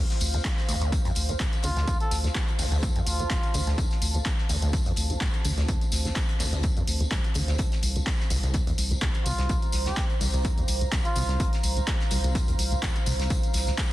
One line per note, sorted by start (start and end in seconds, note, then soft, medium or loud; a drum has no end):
0.00 7.58 C5 medium
0.00 7.59 F5 medium
0.00 0.70 C6 medium
0.10 7.59 A5 medium
0.10 snare soft
0.10 closed hi-hat soft
0.10 tambourine soft
0.20 0.40 D2 loud
0.20 closed hi-hat medium
0.20 open hi-hat loud
0.20 tambourine medium
0.34 0.37 D#2 medium
0.34 closed hi-hat medium
0.34 tambourine soft
0.44 kick loud
0.44 snare loud
0.44 clap loud
0.44 closed hi-hat medium
0.44 tambourine soft
0.57 snare soft
0.57 tambourine soft
0.69 0.88 D2 loud
0.69 0.76 D2 loud
0.69 closed hi-hat medium
0.69 open hi-hat loud
0.69 tambourine medium
0.81 0.94 D2 loud
0.81 closed hi-hat medium
0.81 tambourine soft
0.92 0.99 D#2 loud
0.92 kick loud
0.92 closed hi-hat medium
0.92 tambourine medium
1.05 1.11 F2 loud
1.05 closed hi-hat soft
1.05 tambourine soft
1.15 1.36 D2 loud
1.15 closed hi-hat medium
1.15 open hi-hat loud
1.15 tambourine medium
1.29 1.33 D#2 medium
1.29 closed hi-hat medium
1.29 tambourine soft
1.40 1.47 D1 medium
1.40 kick loud
1.40 snare loud
1.40 clap loud
1.40 closed hi-hat medium
1.40 tambourine medium
1.53 closed hi-hat soft
1.53 tambourine soft
1.63 1.83 D2 medium
1.63 1.71 D3 medium
1.63 1.98 F4 medium
1.63 closed hi-hat medium
1.63 open hi-hat loud
1.63 tambourine medium
1.76 1.86 D2 loud
1.76 snare medium
1.76 closed hi-hat medium
1.76 tambourine soft
1.87 1.95 D2 medium
1.87 kick loud
1.87 closed hi-hat medium
1.87 tambourine soft
2.00 2.17 A4 medium
2.00 closed hi-hat soft
2.00 tambourine soft
2.11 2.31 D2 loud
2.11 snare soft
2.11 closed hi-hat medium
2.11 open hi-hat loud
2.11 tambourine medium
2.24 2.28 D#2 medium
2.24 snare soft
2.24 closed hi-hat medium
2.24 tambourine soft
2.35 kick loud
2.35 snare loud
2.35 clap loud
2.35 closed hi-hat medium
2.35 tambourine medium
2.47 closed hi-hat soft
2.47 tambourine soft
2.59 2.66 D2 medium
2.59 2.78 D2 medium
2.59 open hi-hat loud
2.59 open hi-hat medium
2.59 tambourine medium
2.71 2.84 D2 loud
2.71 closed hi-hat medium
2.71 tambourine soft
2.83 2.90 D#2 medium
2.83 kick loud
2.83 closed hi-hat medium
2.83 tambourine medium
2.95 3.02 F2 loud
2.95 closed hi-hat soft
2.95 tambourine soft
3.06 3.26 D2 loud
3.06 3.74 F4 medium
3.06 closed hi-hat medium
3.06 open hi-hat loud
3.06 tambourine medium
3.19 3.23 D#2 medium
3.19 closed hi-hat medium
3.19 tambourine soft
3.30 3.38 D1 medium
3.30 kick loud
3.30 snare loud
3.30 clap loud
3.30 closed hi-hat medium
3.30 tambourine medium
3.43 closed hi-hat soft
3.43 tambourine soft
3.54 3.74 D2 medium
3.54 3.61 D3 medium
3.54 closed hi-hat medium
3.54 open hi-hat loud
3.54 tambourine loud
3.67 3.76 D2 loud
3.67 snare soft
3.67 closed hi-hat medium
3.67 tambourine soft
3.78 3.85 D2 medium
3.78 kick loud
3.78 closed hi-hat medium
3.78 tambourine medium
3.91 snare soft
3.91 closed hi-hat soft
3.91 tambourine soft
4.02 4.21 D2 loud
4.02 closed hi-hat medium
4.02 open hi-hat loud
4.02 tambourine medium
4.14 4.18 D#2 medium
4.14 closed hi-hat medium
4.14 tambourine soft
4.25 kick loud
4.25 snare loud
4.25 clap loud
4.25 closed hi-hat medium
4.25 tambourine soft
4.38 snare soft
4.38 tambourine soft
4.49 4.57 D2 loud
4.49 4.69 D2 medium
4.49 closed hi-hat medium
4.49 open hi-hat loud
4.49 tambourine medium
4.62 4.75 D2 loud
4.62 closed hi-hat medium
4.62 tambourine soft
4.73 4.80 D#2 loud
4.73 kick loud
4.73 closed hi-hat medium
4.73 tambourine medium
4.86 4.92 F2 loud
4.86 closed hi-hat soft
4.86 tambourine soft
4.96 5.17 D2 loud
4.96 closed hi-hat medium
4.96 open hi-hat loud
4.96 tambourine medium
5.10 5.14 D#2 medium
5.10 closed hi-hat soft
5.10 tambourine soft
5.20 5.28 D1 medium
5.20 kick loud
5.20 snare loud
5.20 clap loud
5.20 closed hi-hat medium
5.20 tambourine medium
5.34 closed hi-hat soft
5.34 tambourine soft
5.45 5.64 D2 medium
5.45 5.52 D3 medium
5.45 closed hi-hat medium
5.45 open hi-hat loud
5.45 tambourine loud
5.57 5.67 D2 loud
5.57 snare medium
5.57 closed hi-hat soft
5.57 tambourine soft
5.68 5.76 D2 medium
5.68 kick loud
5.68 closed hi-hat medium
5.68 tambourine medium
5.81 closed hi-hat soft
5.81 tambourine soft
5.92 6.12 D2 loud
5.92 snare soft
5.92 closed hi-hat medium
5.92 open hi-hat loud
5.92 tambourine medium
6.05 6.09 D#2 medium
6.05 snare soft
6.05 closed hi-hat soft
6.05 tambourine soft
6.15 kick loud
6.15 snare loud
6.15 clap loud
6.15 closed hi-hat medium
6.15 tambourine soft
6.29 closed hi-hat soft
6.29 tambourine soft
6.40 6.47 D2 medium
6.40 6.59 D2 medium
6.40 clap soft
6.40 open hi-hat medium
6.40 open hi-hat loud
6.40 tambourine medium
6.53 6.65 D2 loud
6.53 closed hi-hat soft
6.53 tambourine soft
6.63 6.71 D#2 loud
6.63 kick loud
6.63 closed hi-hat medium
6.63 tambourine soft
6.77 6.83 F2 loud
6.77 closed hi-hat soft
6.77 tambourine soft
6.87 7.07 D2 loud
6.87 closed hi-hat medium
6.87 open hi-hat loud
6.87 tambourine medium
7.00 7.04 D#2 medium
7.00 closed hi-hat soft
7.00 tambourine soft
7.11 7.18 D1 medium
7.11 kick loud
7.11 snare loud
7.11 clap loud
7.11 closed hi-hat medium
7.11 tambourine soft
7.24 closed hi-hat soft
7.24 tambourine soft
7.34 7.55 D2 medium
7.34 7.42 D3 medium
7.34 closed hi-hat medium
7.34 open hi-hat loud
7.34 tambourine medium
7.48 7.57 D2 loud
7.48 snare soft
7.48 closed hi-hat soft
7.48 tambourine soft
7.58 13.93 C5 medium
7.58 kick loud
7.58 closed hi-hat medium
7.58 tambourine soft
7.72 snare soft
7.72 closed hi-hat soft
7.72 tambourine soft
7.78 13.93 F5 medium
7.83 8.02 C2 loud
7.83 closed hi-hat medium
7.83 open hi-hat loud
7.83 tambourine medium
7.92 7.99 D2 medium
7.92 13.93 A#5 medium
7.92 closed hi-hat soft
7.92 tambourine soft
8.07 kick loud
8.07 snare loud
8.07 clap loud
8.07 closed hi-hat medium
8.07 tambourine soft
8.19 snare soft
8.19 tambourine soft
8.30 8.50 C2 medium
8.30 8.38 C2 loud
8.30 closed hi-hat medium
8.30 open hi-hat loud
8.30 tambourine medium
8.43 8.56 C2 loud
8.43 closed hi-hat soft
8.43 tambourine soft
8.54 8.61 D2 medium
8.54 kick loud
8.54 closed hi-hat medium
8.54 tambourine soft
8.67 8.73 D#2 loud
8.67 closed hi-hat soft
8.67 tambourine soft
8.78 8.97 C2 loud
8.78 closed hi-hat medium
8.78 open hi-hat loud
8.78 tambourine medium
8.91 8.95 D2 medium
8.91 closed hi-hat soft
8.91 tambourine soft
9.01 9.09 C2 medium
9.01 kick loud
9.01 snare loud
9.01 clap loud
9.01 closed hi-hat medium
9.01 tambourine soft
9.14 closed hi-hat soft
9.14 tambourine soft
9.26 9.45 C2 medium
9.26 9.33 C3 medium
9.26 9.60 F4 medium
9.26 closed hi-hat medium
9.26 open hi-hat loud
9.26 tambourine medium
9.38 9.48 C2 loud
9.38 snare medium
9.38 closed hi-hat soft
9.38 tambourine soft
9.49 9.57 C2 medium
9.49 kick loud
9.49 closed hi-hat medium
9.49 tambourine soft
9.62 closed hi-hat soft
9.62 tambourine soft
9.72 9.93 C2 loud
9.72 snare soft
9.72 closed hi-hat medium
9.72 open hi-hat loud
9.72 tambourine medium
9.85 9.90 D2 medium
9.85 10.03 G4 medium
9.85 snare soft
9.85 closed hi-hat medium
9.85 tambourine soft
9.97 kick loud
9.97 snare loud
9.97 clap loud
9.97 closed hi-hat medium
9.97 tambourine soft
10.10 closed hi-hat soft
10.10 tambourine soft
10.20 10.28 C2 loud
10.20 10.40 C2 medium
10.20 open hi-hat medium
10.20 open hi-hat loud
10.20 tambourine medium
10.34 10.46 C2 loud
10.34 closed hi-hat medium
10.34 tambourine soft
10.45 10.52 D2 loud
10.45 kick loud
10.45 closed hi-hat medium
10.45 tambourine medium
10.57 10.64 D#2 loud
10.57 closed hi-hat soft
10.57 tambourine soft
10.68 10.88 C2 loud
10.68 closed hi-hat medium
10.68 open hi-hat loud
10.68 tambourine medium
10.81 10.85 D2 medium
10.81 closed hi-hat medium
10.81 tambourine soft
10.92 10.99 C2 medium
10.92 kick medium
10.92 snare loud
10.92 clap loud
10.92 closed hi-hat medium
10.92 tambourine soft
11.05 11.53 F4 loud
11.05 closed hi-hat soft
11.05 tambourine soft
11.16 11.36 C2 medium
11.16 11.23 C3 medium
11.16 closed hi-hat medium
11.16 open hi-hat loud
11.16 tambourine medium
11.29 11.38 C2 loud
11.29 snare soft
11.29 closed hi-hat medium
11.29 tambourine soft
11.40 11.47 C2 medium
11.40 kick loud
11.40 closed hi-hat medium
11.40 tambourine soft
11.53 snare soft
11.53 closed hi-hat soft
11.53 tambourine soft
11.63 11.83 C2 loud
11.63 closed hi-hat medium
11.63 open hi-hat loud
11.63 tambourine medium
11.77 11.80 D2 medium
11.77 closed hi-hat medium
11.77 tambourine soft
11.87 kick loud
11.87 snare loud
11.87 clap loud
11.87 closed hi-hat medium
11.87 tambourine soft
12.00 snare soft
12.00 tambourine soft
12.11 12.18 C2 loud
12.11 12.31 C2 medium
12.11 closed hi-hat medium
12.11 open hi-hat loud
12.11 tambourine medium
12.24 12.36 C2 loud
12.24 closed hi-hat medium
12.24 tambourine soft
12.35 12.42 D2 loud
12.35 kick loud
12.35 closed hi-hat medium
12.35 tambourine soft
12.48 12.54 D#2 loud
12.48 closed hi-hat soft
12.48 tambourine soft
12.59 12.78 C2 loud
12.59 closed hi-hat medium
12.59 open hi-hat loud
12.59 tambourine medium
12.72 12.75 D2 medium
12.72 closed hi-hat medium
12.72 tambourine soft
12.83 12.90 C2 medium
12.83 kick loud
12.83 snare loud
12.83 clap loud
12.83 closed hi-hat medium
12.83 tambourine soft
12.96 closed hi-hat soft
12.96 tambourine soft
13.06 13.26 C2 medium
13.06 13.14 C3 medium
13.06 closed hi-hat medium
13.06 open hi-hat loud
13.06 tambourine medium
13.19 13.28 C2 loud
13.19 snare medium
13.19 closed hi-hat medium
13.19 tambourine soft
13.30 13.37 C2 medium
13.30 kick loud
13.30 closed hi-hat medium
13.30 tambourine medium
13.43 closed hi-hat soft
13.43 tambourine soft
13.53 13.74 C2 medium
13.53 snare soft
13.53 closed hi-hat medium
13.53 open hi-hat loud
13.53 tambourine medium
13.67 13.71 D2 medium
13.67 snare soft
13.67 closed hi-hat medium
13.67 tambourine soft
13.78 kick loud
13.78 snare loud
13.78 clap loud
13.78 closed hi-hat medium
13.78 tambourine medium